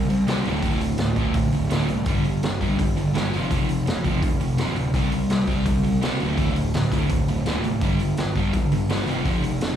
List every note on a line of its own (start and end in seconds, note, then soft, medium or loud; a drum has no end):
0.10 0.27 C2 medium
0.10 0.26 C3 medium
0.10 0.26 G3 medium
0.10 open hi-hat soft
0.28 0.44 C2 medium
0.28 0.44 C3 medium
0.28 0.45 G3 medium
0.28 0.45 C4 medium
0.28 snare loud
0.28 open hi-hat medium
0.45 0.62 D1 medium
0.45 0.62 D2 medium
0.45 0.63 A2 medium
0.45 0.63 D3 medium
0.45 open hi-hat soft
0.62 0.98 D1 medium
0.62 0.80 D2 medium
0.62 0.81 A2 medium
0.62 0.81 D3 medium
0.62 kick loud
0.62 open hi-hat medium
0.81 0.98 D2 medium
0.81 0.98 A2 medium
0.81 open hi-hat medium
0.98 1.15 D1 medium
0.98 snare loud
0.98 open hi-hat medium
1.02 1.17 D2 medium
1.02 1.17 A2 medium
1.16 1.33 D1 medium
1.16 1.35 D2 medium
1.16 1.35 A2 medium
1.16 kick medium
1.16 open hi-hat soft
1.20 1.35 D3 medium
1.33 1.51 D1 medium
1.33 1.52 D2 medium
1.33 1.52 A2 medium
1.33 kick loud
1.33 open hi-hat medium
1.52 1.70 D1 medium
1.52 1.70 D2 medium
1.52 1.70 A2 medium
1.52 open hi-hat soft
1.70 1.89 D1 medium
1.70 1.88 D2 medium
1.70 1.88 A2 medium
1.70 1.88 D3 medium
1.70 snare loud
1.70 open hi-hat medium
1.88 2.06 C2 medium
1.88 2.05 D2 medium
1.88 2.05 A2 medium
1.88 open hi-hat soft
2.06 2.41 G1 medium
2.06 2.24 G2 medium
2.06 2.24 D3 medium
2.06 2.25 G3 medium
2.06 kick loud
2.06 open hi-hat medium
2.24 2.41 G2 medium
2.24 2.41 D3 medium
2.24 open hi-hat soft
2.43 2.60 G1 medium
2.43 2.59 G2 medium
2.43 2.59 D3 medium
2.43 snare loud
2.43 open hi-hat medium
2.60 2.78 G1 medium
2.60 2.78 G2 medium
2.60 2.78 D3 medium
2.60 2.78 G3 medium
2.60 kick medium
2.60 open hi-hat soft
2.78 2.96 G1 medium
2.78 2.95 G2 medium
2.78 2.95 D3 medium
2.78 kick loud
2.78 open hi-hat medium
2.97 3.14 G1 medium
2.97 3.12 G2 medium
2.97 3.13 D3 medium
2.97 open hi-hat soft
3.14 3.32 G1 medium
3.14 3.31 G2 medium
3.14 3.32 D3 medium
3.14 3.32 G3 medium
3.14 snare loud
3.14 open hi-hat medium
3.32 3.50 F1 medium
3.32 3.49 F2 medium
3.32 3.49 C3 medium
3.32 3.50 F3 medium
3.32 open hi-hat soft
3.51 3.85 F1 medium
3.51 3.68 F2 medium
3.51 3.68 C3 medium
3.51 3.68 F3 loud
3.51 kick loud
3.51 open hi-hat medium
3.69 3.85 F2 medium
3.69 3.85 C3 medium
3.69 open hi-hat soft
3.87 4.04 F1 medium
3.87 4.03 F2 medium
3.87 4.04 C3 medium
3.87 snare medium
3.87 open hi-hat medium
4.04 4.21 F1 medium
4.04 4.21 F2 medium
4.04 4.22 C3 medium
4.04 4.22 F3 medium
4.04 kick medium
4.04 open hi-hat soft
4.22 4.39 F1 medium
4.22 4.39 F2 medium
4.22 4.39 C3 medium
4.22 kick loud
4.22 open hi-hat medium
4.40 4.57 F1 medium
4.40 4.57 F2 medium
4.40 4.57 C3 medium
4.40 open hi-hat soft
4.58 4.75 F1 medium
4.58 4.76 F2 medium
4.58 4.76 C3 medium
4.58 4.76 F3 medium
4.58 snare medium
4.58 open hi-hat medium
4.76 4.93 D1 medium
4.76 4.93 F2 medium
4.76 4.93 C3 medium
4.76 open hi-hat soft
4.94 5.28 C2 medium
4.94 5.12 C3 medium
4.94 5.12 G3 loud
4.94 5.12 C4 loud
4.94 kick loud
4.94 open hi-hat medium
5.12 5.29 C3 medium
5.12 5.29 G3 medium
5.12 open hi-hat soft
5.29 5.47 C2 medium
5.29 5.48 C3 medium
5.29 5.48 G3 medium
5.29 snare loud
5.29 open hi-hat medium
5.47 5.65 C2 medium
5.47 5.66 C3 medium
5.47 5.66 G3 medium
5.47 5.66 C4 medium
5.47 kick medium
5.47 open hi-hat soft
5.65 5.83 C2 medium
5.65 5.83 C3 medium
5.65 5.83 G3 medium
5.65 kick loud
5.65 open hi-hat medium
5.84 6.01 C2 medium
5.84 6.00 C3 medium
5.84 6.01 G3 medium
5.84 open hi-hat soft
6.02 6.20 C2 medium
6.02 6.19 C3 medium
6.02 6.19 G3 medium
6.02 6.20 C4 medium
6.02 snare loud
6.02 open hi-hat medium
6.20 6.37 D1 medium
6.20 6.37 D2 medium
6.20 6.37 A2 medium
6.20 6.38 D3 medium
6.20 open hi-hat soft
6.37 6.72 D1 medium
6.37 6.55 D2 medium
6.37 6.55 A2 medium
6.37 6.56 D3 medium
6.37 kick medium
6.37 open hi-hat medium
6.56 6.73 D2 medium
6.56 6.73 A2 medium
6.56 open hi-hat soft
6.74 6.91 D1 medium
6.74 6.90 D2 medium
6.74 6.91 A2 medium
6.74 snare loud
6.74 open hi-hat medium
6.92 7.09 D1 medium
6.92 7.09 D2 medium
6.92 7.10 A2 medium
6.92 7.10 D3 medium
6.92 kick medium
6.92 open hi-hat medium
7.09 7.27 D1 medium
7.09 7.27 D2 medium
7.09 7.27 A2 medium
7.09 kick loud
7.09 open hi-hat medium
7.28 7.45 D1 medium
7.28 7.45 D2 medium
7.28 7.45 A2 medium
7.28 open hi-hat soft
7.46 7.63 D1 medium
7.46 7.63 D2 medium
7.46 7.63 A2 medium
7.46 7.64 D3 medium
7.46 snare loud
7.46 open hi-hat medium
7.63 7.81 F1 medium
7.63 7.81 D2 medium
7.63 7.81 A2 medium
7.63 open hi-hat soft
7.81 8.16 G1 medium
7.81 7.99 G2 medium
7.81 7.99 D3 medium
7.81 8.00 G3 medium
7.81 kick loud
7.81 open hi-hat medium
7.99 8.17 G2 medium
7.99 8.17 D3 medium
7.99 open hi-hat soft
8.17 8.35 G1 medium
8.17 8.35 G2 medium
8.17 8.35 D3 medium
8.17 snare medium
8.17 open hi-hat medium
8.35 8.53 G1 medium
8.35 8.54 G2 medium
8.35 8.54 D3 medium
8.35 8.54 G3 medium
8.35 kick medium
8.35 open hi-hat soft
8.53 8.70 G1 medium
8.53 8.71 G2 medium
8.53 8.71 D3 medium
8.53 kick loud
8.53 open hi-hat medium
8.71 8.89 G1 medium
8.71 8.88 G2 medium
8.71 8.88 D3 medium
8.71 open hi-hat soft
8.89 9.07 G1 medium
8.89 9.07 G2 medium
8.89 9.07 D3 medium
8.89 9.07 G3 medium
8.89 snare medium
8.89 open hi-hat medium
9.07 9.24 F1 medium
9.07 9.25 F2 medium
9.07 9.25 C3 loud
9.07 9.25 F3 medium
9.07 open hi-hat soft
9.25 9.60 F1 medium
9.25 9.43 F2 medium
9.25 9.43 C3 medium
9.25 9.43 F3 medium
9.25 kick medium
9.25 open hi-hat medium
9.43 9.60 F2 medium
9.43 9.60 C3 medium
9.43 open hi-hat medium
9.61 9.76 F1 medium
9.61 9.76 F2 medium
9.61 9.76 C3 medium
9.61 snare medium
9.61 open hi-hat medium